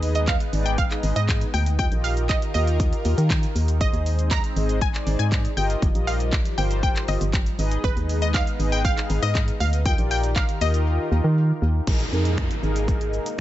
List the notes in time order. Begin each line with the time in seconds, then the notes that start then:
Already playing: D#2 G#3 B3 D#4 G#4 B4 D#5
0.03 open hi-hat, shaker
0.15 D#5, closed hi-hat, shaker
0.27 F5, kick, clap, closed hi-hat, shaker
0.40 closed hi-hat, shaker
0.53 G#1 D#4 G#4 B4 D5, open hi-hat, shaker
0.66 G5, closed hi-hat, shaker
0.78 F5, kick, closed hi-hat, shaker
0.91 D#4 G#4 B4 D#5, clap, closed hi-hat, shaker
1.03 G#1, open hi-hat, shaker
1.16 G#2 D#5, closed hi-hat, shaker
1.29 kick, clap, closed hi-hat, shaker
1.41 closed hi-hat, shaker
1.54 D2 G5, open hi-hat, shaker
1.66 closed hi-hat, shaker
1.79 D#2 D#3 F4 G4 A#4 D#5 G5, kick, closed hi-hat, shaker
1.92 A#1 F4 G4 A#4 D#5, closed hi-hat, shaker
2.04 F5, open hi-hat, shaker
2.17 closed hi-hat, shaker
2.29 D#5, kick, clap, closed hi-hat, shaker
2.42 closed hi-hat, shaker
2.54 D#2 F4 G4 A#4 D#5, open hi-hat, shaker
2.67 closed hi-hat, shaker
2.80 kick, closed hi-hat, shaker
2.93 closed hi-hat, shaker
3.05 D#2, open hi-hat, shaker
3.18 D#3, closed hi-hat, shaker
3.30 kick, clap, closed hi-hat, shaker
3.43 closed hi-hat, shaker
3.55 D#2, open hi-hat, shaker
3.68 closed hi-hat, shaker
3.81 G#1 G#3 C4 D#4 G#4 C5 D#5, kick, closed hi-hat, shaker
3.93 D#2, closed hi-hat, shaker
4.06 open hi-hat, shaker
4.19 closed hi-hat, shaker
4.31 A#5, kick, clap, closed hi-hat, shaker
4.44 closed hi-hat, shaker
4.56 G#1 D#4 G#4 C5 D#5, open hi-hat, shaker
4.69 closed hi-hat, shaker
4.81 G#5, kick, closed hi-hat, shaker
4.94 D#4 G#4 C5 D5, clap, closed hi-hat, shaker
5.07 G#1, open hi-hat, shaker
5.19 G#2 G#5, closed hi-hat, shaker
5.32 kick, clap, closed hi-hat, shaker
5.45 closed hi-hat, shaker
5.57 G1 F3 G3 F4 G4 A#4 D#5 G5, open hi-hat, shaker
5.70 closed hi-hat, shaker
5.82 G1, kick, closed hi-hat, shaker
5.95 A#1 F4 G4 A#4 D#5, closed hi-hat, shaker
6.07 F5, open hi-hat, shaker
6.20 closed hi-hat, shaker
6.33 kick, clap, closed hi-hat, shaker
6.45 closed hi-hat, shaker
6.58 G1 F4 G4 A#4 C5 G5, open hi-hat, shaker
6.71 closed hi-hat, shaker
6.83 G5, kick, closed hi-hat, shaker
6.96 clap, closed hi-hat, shaker
7.08 G1 D#5, open hi-hat, shaker
7.21 G1, closed hi-hat, shaker
7.33 kick, clap, closed hi-hat, shaker
7.46 closed hi-hat, shaker
7.58 G#1 G#3 B3 D#4 G#4 B4 D#5, open hi-hat, shaker
7.71 closed hi-hat, shaker
7.84 G#1 B4, kick, closed hi-hat, shaker
7.97 D#2, closed hi-hat, shaker
8.09 open hi-hat, shaker
8.22 D#5, closed hi-hat, shaker
8.34 F5, kick, clap, closed hi-hat, shaker
8.47 closed hi-hat, shaker
8.59 G#1 D#4 G#4 B4 D#5, open hi-hat, shaker
8.72 G5, closed hi-hat, shaker
8.85 F5, kick, closed hi-hat, shaker
8.97 D#4 G#4 B4 F5, clap, closed hi-hat, shaker
9.10 G#1, open hi-hat, shaker
9.23 G#2 D#5, closed hi-hat, shaker
9.35 kick, clap, closed hi-hat, shaker
9.48 closed hi-hat, shaker
9.60 D2 F5, open hi-hat, shaker
9.73 closed hi-hat, shaker
9.85 D#2 D#3 F4 G4 A#4 D#5 G5, kick, closed hi-hat, shaker
9.98 A#1 F4 G4 A#4 D5, closed hi-hat, shaker
10.11 G5, open hi-hat, shaker
10.23 closed hi-hat, shaker
10.36 F5, kick, clap, closed hi-hat, shaker
10.49 closed hi-hat, shaker
10.61 D#2 F4 G4 A#4 D#5, open hi-hat, shaker
10.74 closed hi-hat, shaker
11.12 D#2
11.24 D#3
11.62 D#2
11.87 A#1 G#3 A#3 D#4 G#4 A#4, kick, crash, downlifter, shaker
12.00 closed hi-hat, shaker
12.12 F2 D#4 G#4 A#4, shaker
12.25 closed hi-hat, shaker
12.38 finger snap, kick, shaker
12.51 closed hi-hat, shaker
12.63 G#1 D#4 G#4 A#4, shaker
12.76 closed hi-hat, shaker
12.88 kick, shaker
13.01 closed hi-hat, shaker
13.13 shaker
13.26 closed hi-hat, shaker